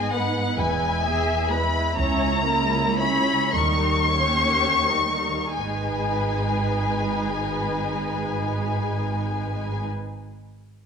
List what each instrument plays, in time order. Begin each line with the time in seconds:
Already playing: cello section G#2, viola section G#3 B3, violin section G#4 D#5
0.13 viola section B3 D#4, violin section B4 F#5
0.57 double bass section E1, cello section E2, viola section G#3 E4, violin section B4 G#5
1.03 viola section B3 G#4, violin section G#4 E5
1.49 viola section G#3 E4, violin section B4 B5
1.97 cello section C#2, double bass section C#2, viola section C#4 E4, violin section C#4 C#5 A#5
2.47 viola section A#3 C#4, violin section E4 A#4
2.99 violin section C#4 C#5 B5, viola section C#4 E4
3.54 cello section D#2, double bass section D#2, viola section G3 D#4, violin section A#4 C#6
4.18 viola section A#3 C#4, violin section G4 C#5
4.88 viola section G3 D#4, violin section A#4
5.57 double bass section G#1, cello section G#2, viola section G#3 D#4, violin section G#4 B4 G#5